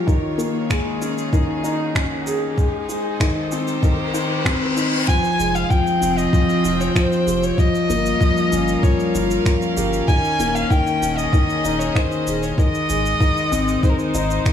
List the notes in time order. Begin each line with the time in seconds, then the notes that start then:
Already playing: C#4 F4 A#4 C#5, riser
0.07 D#3, kick, shaker
0.30 G#4
0.38 A#3, shaker
0.69 G#3, finger snap, kick, shaker
0.80 D#4
1.01 C#4, shaker
1.18 shaker
1.33 D#3, kick, shaker
1.64 D#4, shaker
1.95 C#4, finger snap, kick, shaker
2.26 D#1 G#4, shaker
2.58 G#3, kick, shaker
2.87 G#1 G#3 C5, shaker
3.20 D#3, finger snap, kick, shaker
3.43 G4
3.52 C4, shaker
3.68 shaker
3.83 D#3, kick, reverse cymbal, shaker
4.14 D#3, shaker
4.45 C4, finger snap, kick, shaker
4.76 D#3, shaker
5.08 F3 G#5, kick, shaker
5.24 shaker
5.39 F1 G#3, shaker
5.43 G#4
5.55 F5, shaker
5.67 F3 C4 G5, kick
5.71 shaker
5.87 shaker
6.01 F1 C4, shaker
6.18 D#5 G5, shaker
6.33 F3, kick, shaker
6.49 shaker
6.64 F1 F4, shaker
6.80 C#5, shaker
6.95 F3 C5, finger snap, kick, shaker
7.12 shaker
7.27 F1 G4, shaker
7.43 C#5, shaker
7.58 F3 G3 D#5, kick, shaker
7.75 shaker
7.87 G1 A#3 A#4, shaker
8.06 shaker
8.10 C#4
8.20 F3, kick, shaker
8.37 shaker
8.48 C#4 F5
8.52 G1, shaker
8.68 shaker
8.83 F3 C#5, kick, shaker
9.00 shaker
9.15 G1 F4, shaker
9.31 shaker
9.46 F3, finger snap, kick, shaker
9.62 shaker
9.77 G1 G4, shaker
9.93 shaker
10.08 D#3 G#5, kick, shaker
10.25 shaker
10.39 D#1 A#3, shaker
10.55 F5, shaker
10.70 D#3 G5, kick, shaker
10.87 shaker
11.02 D#1 C#4, shaker
11.09 D#5
11.17 G#4 D#5, shaker
11.33 D#3, kick, shaker
11.50 shaker
11.65 D#1 D#4, shaker
11.79 C#5, shaker
11.95 D#3 C5, finger snap, kick, shaker
12.12 shaker
12.27 D#1 G#4, shaker
12.43 C#5, shaker
12.57 D#3 G#3 D#5, kick, shaker
12.75 shaker
12.79 D#4
12.89 G#1 G#3, shaker
13.06 shaker
13.21 D#3, kick, shaker
13.37 shaker
13.52 G#1 C4, shaker
13.68 C5, shaker
13.83 D#3 C5, kick, shaker
13.89 A#4
13.98 C5, shaker
14.14 G#1 D#4, shaker
14.31 shaker
14.46 D#3, finger snap, kick, shaker